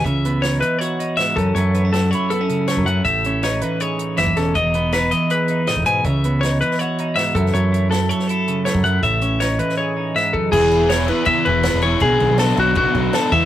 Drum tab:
CC |----------------|----------------|----------------|----------------|
HH |x-x-x-x-x-x-x-x-|x-x-x-x-x-x-x-x-|x-x-x-x-x-x-x-x-|x-x-x-x-x-x-x-x-|
SD |----o-------o---|----o-------o---|----o-------o-o-|----o-------o---|
BD |o-------------o-|-------------o--|o------------o--|o------------o--|

CC |----------------|----------------|----------------|x-x-x-x-x-x-x-x-|
HH |x-x-x-x-x-x-x-x-|x-x-x-x-x-x-x-x-|x-x-x-x---------|----------------|
SD |----o--o----o--o|----o--o----o---|----o--o----o---|----oo------o---|
BD |o-------------o-|-------------o--|o-------------o-|o-------o-------|

CC |x-x-x-x-x-x-x-x-|
HH |----------------|
SD |----o-------o---|
BD |o-------o-o---o-|